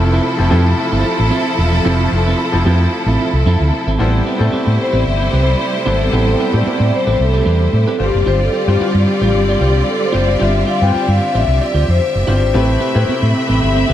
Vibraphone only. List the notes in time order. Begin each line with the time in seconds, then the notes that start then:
4.81 C5
4.96 D5
5.09 E5
5.24 C5
5.50 D5
5.77 C5
6.03 A4
6.56 D5
6.95 C5
7.22 A4
8.02 G4
8.28 C5
8.43 A4
8.56 G4
8.83 F4
8.97 G4
9.90 A4
10.04 C5
10.31 D5
10.43 E5
10.69 F5
10.83 G5
11.09 F5
11.37 E5
11.64 D5
11.90 C5
13.63 E5